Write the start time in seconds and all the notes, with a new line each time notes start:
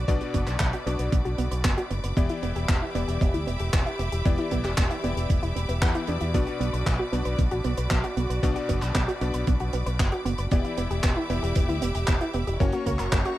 Already playing: F#4 D5 B5 D6
0.08 B1 B2 B3 D4 F#4 D5, kick, closed hi-hat
0.21 F#4, closed hi-hat
0.34 F#1 B3, kick, closed hi-hat
0.47 B1 B4, clap, closed hi-hat
0.59 B1 B3, kick, clap, closed hi-hat
0.73 F#4, closed hi-hat
0.86 B1 B2 B3 D4 F#4 D5, closed hi-hat
0.99 B1 B4, closed hi-hat
1.12 B1 B3, kick, closed hi-hat
1.25 B1 F#4, closed hi-hat
1.38 B1 B3, closed hi-hat
1.51 B1 B4, closed hi-hat
1.65 F#1 B3, kick, clap, closed hi-hat
1.78 F#4, closed hi-hat
1.91 F#1 B3, closed hi-hat
2.04 F#1 B4, closed hi-hat
2.17 E1 E3 B3 E4 G4 D5 E5, kick, closed hi-hat
2.29 E4, closed hi-hat
2.43 E1 B3, closed hi-hat
2.56 E1 G4, closed hi-hat
2.69 E1 B3, kick, clap, closed hi-hat
2.82 E4
2.95 E1 E3 B3 E4 G4 D5, closed hi-hat
3.08 E1 G4, closed hi-hat
3.21 E1 B3, kick, closed hi-hat
3.34 D2 E4, closed hi-hat
3.47 E1 B3, closed hi-hat
3.59 E1 G4, closed hi-hat
3.73 E1 B3, kick, clap, closed hi-hat
3.86 E4, closed hi-hat
3.99 E1 B3, closed hi-hat
4.12 E1 G4, closed hi-hat
4.25 E1 E3 B3 E4 G4 D5, kick, closed hi-hat
4.38 E4, closed hi-hat
4.51 B1 B3, kick, closed hi-hat
4.64 E1 G4, clap, closed hi-hat
4.78 E1 B3, kick, clap, closed hi-hat
4.91 E4, closed hi-hat
5.04 E1 E3 B3 E4 G4 D5, closed hi-hat
5.17 E1 G4, closed hi-hat
5.30 E1 B3, kick, closed hi-hat
5.43 E1 E4, closed hi-hat
5.56 E1 B3, closed hi-hat
5.69 E1 B3, closed hi-hat
5.82 E2 E3 B3 E4 G4 F#5, kick, clap, closed hi-hat
5.95 E4, closed hi-hat
6.07 E2 B2 B3 D4 E4 G4 D5, closed hi-hat
6.21 E2 E4, closed hi-hat
6.34 B1 B2 B3 D4 F#4 D5, kick, closed hi-hat
6.47 F#4, closed hi-hat
6.60 B1 B3, closed hi-hat
6.73 B1 B4, closed hi-hat
6.86 B1 B3, kick, clap, closed hi-hat
6.99 F#4
7.12 B1 B2 B3 D4 F#4 D5, closed hi-hat
7.25 B1 B4, closed hi-hat
7.38 B1 B3, kick, closed hi-hat
7.51 A1 F#4, closed hi-hat
7.64 B1 B3, closed hi-hat
7.77 B1 B4, closed hi-hat
7.91 B1 B3, kick, clap, closed hi-hat
8.04 F#4, closed hi-hat
8.17 B1 B3, closed hi-hat
8.30 B1 B4, closed hi-hat
8.43 B1 B2 B3 D4 F#4 D5, kick, closed hi-hat
8.56 F#4, closed hi-hat
8.69 F#1 B3, kick, closed hi-hat
8.82 B1 B4, clap, closed hi-hat
8.95 B1 B3, kick, clap, closed hi-hat
9.08 F#4, closed hi-hat
9.21 B1 B2 B3 D4 F#4 D5, closed hi-hat
9.34 B1 B4, closed hi-hat
9.47 B1 B3, kick, closed hi-hat
9.60 B1 F#4, closed hi-hat
9.73 B1 B3, closed hi-hat
9.86 B1 B4, closed hi-hat
9.99 F#1 B3, kick, clap, closed hi-hat
10.12 F#4, closed hi-hat
10.25 F#1 B3, closed hi-hat
10.38 F#1 B4, closed hi-hat
10.51 E1 E3 B3 E4 G4 D5 E5 B5 D6, kick, closed hi-hat
10.65 E4, closed hi-hat
10.77 E1 B3, closed hi-hat
10.91 E1 G4, closed hi-hat
11.04 E1 B3, kick, clap, closed hi-hat
11.17 E4
11.30 E1 E3 B3 E4 G4 D5, closed hi-hat
11.43 E1 G4, closed hi-hat
11.55 E1 B3, kick, closed hi-hat
11.69 D2 E4, closed hi-hat
11.82 E1 B3, closed hi-hat
11.95 E1 G4, closed hi-hat
12.07 E1 B3, kick, clap, closed hi-hat
12.21 E4, closed hi-hat
12.34 E1 B3, closed hi-hat
12.47 E1 G4, closed hi-hat
12.60 F#1 A#3 C#4 F#4 C#5 A#5 C#6, kick, closed hi-hat
12.72 F#4, closed hi-hat
12.86 C#2 A#3, kick, closed hi-hat
12.99 F#1 A#4, clap, closed hi-hat
13.12 F#1 A#3, kick, clap, closed hi-hat
13.25 F#4, closed hi-hat